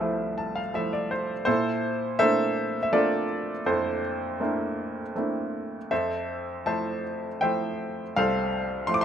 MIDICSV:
0, 0, Header, 1, 2, 480
1, 0, Start_track
1, 0, Key_signature, -1, "major"
1, 0, Tempo, 727273
1, 966, Time_signature, 3, 2, 24, 8
1, 2404, Tempo, 756620
1, 4804, Tempo, 729927
1, 5870, End_track
2, 0, Start_track
2, 0, Title_t, "Grand piano"
2, 0, Program_c, 0, 0
2, 0, Control_c, 0, 64, 127
2, 0, Note_on_c, 0, 36, 54
2, 0, Note_on_c, 0, 52, 45
2, 0, Note_on_c, 0, 53, 40
2, 0, Note_on_c, 0, 57, 36
2, 0, Note_on_c, 0, 69, 49
2, 0, Note_on_c, 0, 72, 48
2, 0, Note_on_c, 0, 76, 70
2, 0, Note_on_c, 0, 77, 70
2, 2, Note_off_c, 0, 53, 0
2, 2, Note_on_c, 0, 53, 47
2, 4, Note_off_c, 0, 57, 0
2, 4, Note_on_c, 0, 57, 39
2, 8, Note_on_c, 0, 64, 50
2, 249, Note_on_c, 0, 81, 59
2, 360, Note_off_c, 0, 81, 0
2, 366, Note_off_c, 0, 77, 0
2, 366, Note_on_c, 0, 77, 57
2, 390, Note_off_c, 0, 53, 0
2, 391, Note_off_c, 0, 57, 0
2, 393, Note_off_c, 0, 64, 0
2, 455, Note_off_c, 0, 76, 0
2, 463, Note_off_c, 0, 69, 0
2, 464, Note_off_c, 0, 72, 0
2, 479, Note_off_c, 0, 77, 0
2, 488, Note_on_c, 0, 53, 45
2, 491, Note_on_c, 0, 57, 41
2, 495, Note_on_c, 0, 64, 47
2, 495, Note_on_c, 0, 76, 64
2, 604, Note_off_c, 0, 76, 0
2, 613, Note_on_c, 0, 74, 57
2, 722, Note_off_c, 0, 74, 0
2, 732, Note_on_c, 0, 72, 64
2, 870, Note_off_c, 0, 53, 0
2, 872, Note_off_c, 0, 57, 0
2, 874, Note_off_c, 0, 64, 0
2, 939, Note_off_c, 0, 36, 0
2, 948, Note_off_c, 0, 72, 0
2, 958, Note_on_c, 0, 72, 83
2, 966, Note_on_c, 0, 69, 60
2, 970, Note_on_c, 0, 46, 61
2, 971, Note_on_c, 0, 64, 59
2, 974, Control_c, 0, 64, 0
2, 975, Note_off_c, 0, 52, 0
2, 1097, Control_c, 0, 64, 127
2, 1438, Note_off_c, 0, 69, 0
2, 1439, Note_off_c, 0, 72, 0
2, 1442, Note_off_c, 0, 64, 0
2, 1445, Note_on_c, 0, 76, 92
2, 1448, Note_on_c, 0, 69, 70
2, 1449, Note_on_c, 0, 58, 44
2, 1449, Note_on_c, 0, 72, 67
2, 1450, Note_on_c, 0, 57, 49
2, 1451, Note_on_c, 0, 60, 43
2, 1452, Note_on_c, 0, 64, 53
2, 1455, Note_on_c, 0, 62, 44
2, 1828, Note_off_c, 0, 58, 0
2, 1829, Note_off_c, 0, 57, 0
2, 1830, Note_off_c, 0, 60, 0
2, 1830, Note_off_c, 0, 64, 0
2, 1832, Note_off_c, 0, 62, 0
2, 1856, Note_off_c, 0, 76, 0
2, 1866, Note_on_c, 0, 76, 62
2, 1915, Note_off_c, 0, 76, 0
2, 1925, Note_off_c, 0, 69, 0
2, 1931, Note_on_c, 0, 57, 47
2, 1931, Note_on_c, 0, 60, 43
2, 1932, Note_on_c, 0, 74, 80
2, 1932, Note_on_c, 0, 76, 52
2, 1933, Note_on_c, 0, 62, 41
2, 1934, Note_on_c, 0, 58, 42
2, 1935, Note_on_c, 0, 69, 63
2, 1939, Note_on_c, 0, 65, 59
2, 2138, Note_off_c, 0, 72, 0
2, 2315, Note_off_c, 0, 57, 0
2, 2315, Note_off_c, 0, 60, 0
2, 2316, Note_off_c, 0, 62, 0
2, 2316, Note_off_c, 0, 76, 0
2, 2317, Note_off_c, 0, 58, 0
2, 2381, Note_off_c, 0, 46, 0
2, 2407, Note_off_c, 0, 69, 0
2, 2417, Note_on_c, 0, 41, 58
2, 2417, Note_on_c, 0, 69, 49
2, 2418, Note_on_c, 0, 64, 48
2, 2418, Note_on_c, 0, 72, 67
2, 2425, Note_off_c, 0, 74, 0
2, 2627, Note_off_c, 0, 65, 0
2, 2884, Note_on_c, 0, 57, 40
2, 2885, Note_off_c, 0, 64, 0
2, 2889, Note_on_c, 0, 60, 39
2, 2890, Note_on_c, 0, 58, 38
2, 2891, Note_on_c, 0, 62, 36
2, 2895, Note_on_c, 0, 64, 47
2, 3268, Note_off_c, 0, 57, 0
2, 3270, Note_off_c, 0, 60, 0
2, 3271, Note_off_c, 0, 58, 0
2, 3272, Note_off_c, 0, 62, 0
2, 3274, Note_off_c, 0, 64, 0
2, 3343, Note_off_c, 0, 69, 0
2, 3343, Note_off_c, 0, 72, 0
2, 3365, Note_on_c, 0, 57, 37
2, 3372, Note_on_c, 0, 58, 32
2, 3373, Note_on_c, 0, 60, 35
2, 3375, Note_on_c, 0, 64, 39
2, 3376, Note_on_c, 0, 62, 33
2, 3749, Note_off_c, 0, 57, 0
2, 3753, Note_off_c, 0, 58, 0
2, 3754, Note_off_c, 0, 60, 0
2, 3755, Note_off_c, 0, 64, 0
2, 3756, Note_off_c, 0, 62, 0
2, 3825, Note_off_c, 0, 41, 0
2, 3842, Note_on_c, 0, 69, 50
2, 3842, Note_on_c, 0, 76, 72
2, 3845, Note_on_c, 0, 72, 51
2, 3849, Note_on_c, 0, 41, 53
2, 3853, Control_c, 0, 64, 0
2, 3950, Control_c, 0, 64, 127
2, 4312, Note_off_c, 0, 76, 0
2, 4314, Note_off_c, 0, 72, 0
2, 4319, Note_on_c, 0, 81, 69
2, 4322, Note_on_c, 0, 53, 40
2, 4322, Note_on_c, 0, 76, 53
2, 4323, Note_on_c, 0, 72, 53
2, 4324, Note_on_c, 0, 57, 39
2, 4328, Note_on_c, 0, 64, 49
2, 4542, Note_off_c, 0, 69, 0
2, 4706, Note_off_c, 0, 53, 0
2, 4707, Note_off_c, 0, 57, 0
2, 4709, Note_off_c, 0, 64, 0
2, 4791, Note_off_c, 0, 72, 0
2, 4791, Note_off_c, 0, 76, 0
2, 4793, Note_on_c, 0, 79, 74
2, 4800, Note_on_c, 0, 76, 54
2, 4801, Note_on_c, 0, 72, 54
2, 4807, Note_on_c, 0, 53, 42
2, 4808, Note_on_c, 0, 57, 41
2, 4811, Note_on_c, 0, 64, 47
2, 4815, Note_off_c, 0, 81, 0
2, 5191, Note_off_c, 0, 53, 0
2, 5192, Note_off_c, 0, 57, 0
2, 5194, Note_off_c, 0, 64, 0
2, 5262, Note_off_c, 0, 41, 0
2, 5290, Note_on_c, 0, 77, 85
2, 5292, Note_on_c, 0, 36, 54
2, 5293, Note_off_c, 0, 72, 0
2, 5295, Note_off_c, 0, 79, 0
2, 5300, Note_on_c, 0, 69, 61
2, 5303, Note_on_c, 0, 72, 58
2, 5497, Note_off_c, 0, 76, 0
2, 5755, Note_on_c, 0, 84, 83
2, 5762, Note_on_c, 0, 53, 48
2, 5763, Note_on_c, 0, 57, 45
2, 5772, Note_on_c, 0, 64, 48
2, 5781, Note_off_c, 0, 77, 0
2, 5801, Note_on_c, 0, 86, 76
2, 5806, Note_off_c, 0, 84, 0
2, 5848, Note_on_c, 0, 84, 85
2, 5850, Note_off_c, 0, 86, 0
2, 5870, Note_off_c, 0, 36, 0
2, 5870, Note_off_c, 0, 53, 0
2, 5870, Note_off_c, 0, 57, 0
2, 5870, Note_off_c, 0, 64, 0
2, 5870, Note_off_c, 0, 69, 0
2, 5870, Note_off_c, 0, 72, 0
2, 5870, Note_off_c, 0, 84, 0
2, 5870, End_track
0, 0, End_of_file